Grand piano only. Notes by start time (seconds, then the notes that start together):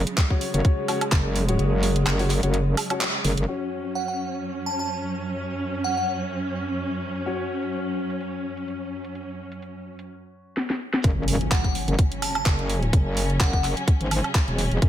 0.30 C#4 F#4 C#5
0.54 C#4 F#4 C#5
0.88 C#4 F#4 C#5
1.49 C#4 F#4 C#5
2.19 C#4 F#4 C#5
2.43 C#4 F#4 C#5
2.90 C#4 F#4 C#5
3.48 C#4 F#4 C#5
7.26 C#4 F#4 C#5